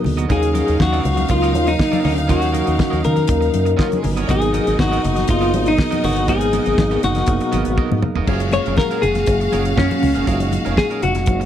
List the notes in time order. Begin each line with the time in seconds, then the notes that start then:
Already playing: B2 F#3 A#3 B3 D#4 G#4 A#4
0.04 D2, muted clean electric guitar stroke, open hi-hat, low conga
0.17 B3 F#4 A#4 D#5, closed hi-hat
0.29 D#2 C#3 F#3 A#3 C#4 D#4 F#4 G#4 A4 A#4 D#5 F5, kick, closed hi-hat, muted conga, low conga
0.37 A#4
0.41 muted clean electric guitar stroke, closed hi-hat, muted conga
0.53 C#4 F#4 A#4 D#5, closed hi-hat, high conga
0.66 D#2 C#4 F#4 A#4 D#5, closed hi-hat
0.79 D#2 F#4, muted clean electric guitar stroke, kick, snare, muted conga, high conga
0.93 C#4 F#4 A#4 D#5, closed hi-hat
1.04 C#2, muted clean electric guitar stroke, closed hi-hat, low conga
1.17 muted clean electric guitar stroke, closed hi-hat, high conga
1.29 C#2 F#3 A#3 C#4 D#4 F4 A#4, muted clean electric guitar stroke, kick, closed hi-hat
1.42 C#4 F#4 A#4 D#5, closed hi-hat
1.54 D#2 F#3 A#3 C#4 D#4 A#4, muted clean electric guitar stroke, closed hi-hat, high conga
1.67 D#4, muted clean electric guitar stroke, closed hi-hat
1.79 muted clean electric guitar stroke, kick, snare, muted conga
1.92 C#4 F#4 A#4 D#5, closed hi-hat, muted conga, high conga
2.03 D2 C#4 D#4 F#4 A#4 D#5, open hi-hat, low conga
2.17 muted clean electric guitar stroke, closed hi-hat
2.28 D#2 F#3 A#3 C#4 D#4 F#4 A#4 D#5, kick, closed hi-hat, muted conga, low conga
2.42 muted clean electric guitar stroke, closed hi-hat, muted conga
2.52 C#4 F#4 A#4 D#5, closed hi-hat, high conga
2.66 D#2 C#4 F#4 A#4 D#5, closed hi-hat
2.77 muted clean electric guitar stroke, kick, snare, muted conga, high conga
2.90 D#2 C#4 F#4 A#4 D#5, closed hi-hat
3.02 D#3 A#4, muted clean electric guitar stroke, closed hi-hat, low conga
3.16 muted clean electric guitar stroke, closed hi-hat, high conga
3.28 D#2 F#3 A#3 C#4 D#4 A#4, muted clean electric guitar stroke, kick, closed hi-hat
3.41 muted clean electric guitar stroke, closed hi-hat
3.53 F#2 F#3 A#3 C#4 D#4 A#4, closed hi-hat, high conga
3.65 muted clean electric guitar stroke, closed hi-hat
3.77 F3 C#4 F4 F#4 A#4 D#5, kick, snare
3.87 F#3 F#4, muted clean electric guitar stroke
3.92 G#3 G#4, closed hi-hat, muted conga, high conga
4.03 G1 A#3 A#4, muted clean electric guitar stroke, open hi-hat, low conga
4.12 B3 B4
4.17 C#4 F#4 A#4 C#5 D#5, closed hi-hat
4.28 G#1 B2 F#3 A#3 B3 D#4 F#4 G#4 A#4 D#5, kick, closed hi-hat, muted conga, low conga
4.41 muted clean electric guitar stroke, closed hi-hat, muted conga
4.53 B3 F#4 A#4 D#5, closed hi-hat, high conga
4.66 G#1 B3 F#4 A#4 D#5, closed hi-hat
4.79 G#1 F#4, muted clean electric guitar stroke, kick, snare, high conga
4.91 B3 F#4 A#4 D#5, closed hi-hat, muted conga
5.03 F#1, muted clean electric guitar stroke, closed hi-hat, low conga
5.16 muted clean electric guitar stroke, snare, closed hi-hat, high conga
5.28 F#1 F#3 A#3 B3 D#4 F4 G#4, muted clean electric guitar stroke, kick, closed hi-hat, muted conga
5.41 B3 F#4 A#4 D#5, closed hi-hat, muted conga
5.53 G#1 F#3 A#3 B3 D#4 G#4, muted clean electric guitar stroke, closed hi-hat, high conga
5.66 D#4, muted clean electric guitar stroke, closed hi-hat
5.78 muted clean electric guitar stroke, kick, snare
5.90 B3 F#4 A#4 D#5, closed hi-hat, muted conga, high conga
6.03 G1 B3 F#4 A#4 D#5, open hi-hat, low conga
6.16 muted clean electric guitar stroke, closed hi-hat
6.27 G#1 F#3 A#3 B3 D#4 F#4 G#4 A#4 D#5 F5, kick, closed hi-hat, muted conga
6.41 muted clean electric guitar stroke, closed hi-hat
6.53 B3 F#4 A#4 D#5, closed hi-hat, high conga
6.66 G#1 B3 F#4 A#4 D#5, closed hi-hat
6.78 G#1, muted clean electric guitar stroke, kick, snare, muted conga, high conga
6.91 B3 F#4 A#4 D#5, closed hi-hat
7.03 F#1 F#4, muted clean electric guitar stroke, closed hi-hat, low conga
7.15 muted clean electric guitar stroke, snare, closed hi-hat, high conga
7.26 F#1 F#3 A#3 B3 D#4 G#4, muted clean electric guitar stroke, kick, closed hi-hat, muted conga
7.40 muted clean electric guitar stroke, closed hi-hat, muted conga
7.52 G#1 F#3 A#3 B3 D#4 F#4 G#4 A#4 D#5, closed hi-hat, high conga
7.65 G#1, muted clean electric guitar stroke, closed hi-hat
7.77 B3 F#4 A#4 D#5, kick, high tom, muted conga
7.91 G#2, muted clean electric guitar stroke, muted conga, high conga
8.02 muted clean electric guitar stroke, mid tom, low conga
8.16 F1 B3 F#4 A#4 D#5, floor tom
8.27 F#1 A#2 F#3 G#3 A#3 C#4 F4 F#4 G#4 A#4 F5, kick, crash
8.40 muted clean electric guitar stroke, closed hi-hat, muted conga
8.52 C#5, muted clean electric guitar stroke, closed hi-hat, high conga
8.66 F1 C#4 G#4 A#4 F5, closed hi-hat
8.77 A#4, kick, snare, muted conga, high conga
8.91 C#4 G#4 A#4 F5, closed hi-hat, muted conga
9.02 F1 G#4, muted clean electric guitar stroke, closed hi-hat, low conga
9.15 muted clean electric guitar stroke, snare, closed hi-hat, high conga
9.26 F#1, muted clean electric guitar stroke, kick, closed hi-hat, muted conga, high conga
9.40 muted clean electric guitar stroke, closed hi-hat
9.52 F#1 F#3 A#3 C#4 F4 G#4 A#4 F5, closed hi-hat, high conga
9.65 muted clean electric guitar stroke, closed hi-hat
9.77 F#2 C#4 G#4 A#4 F5, kick, snare
9.90 muted clean electric guitar stroke, closed hi-hat, high conga
10.02 C#2, muted clean electric guitar stroke, open hi-hat, low conga
10.15 F1 C#4 G#4 A#4 F5, closed hi-hat
10.26 F#1 F#3 A#3 C#4 D#4 F4 G#4 A#4 F5, kick, closed hi-hat, muted conga
10.40 muted clean electric guitar stroke, closed hi-hat, muted conga
10.52 muted clean electric guitar stroke, closed hi-hat, high conga
10.65 F1 C#4 G#4 A#4 F5, closed hi-hat
10.77 G#4, muted clean electric guitar stroke, kick, snare, high conga
10.90 C#4 G#4 A#4 F5, closed hi-hat
11.03 F1 F#4, muted clean electric guitar stroke, closed hi-hat, low conga
11.15 muted clean electric guitar stroke, snare, closed hi-hat, high conga
11.26 F#1, muted clean electric guitar stroke, kick, closed hi-hat, high conga
11.40 muted clean electric guitar stroke, closed hi-hat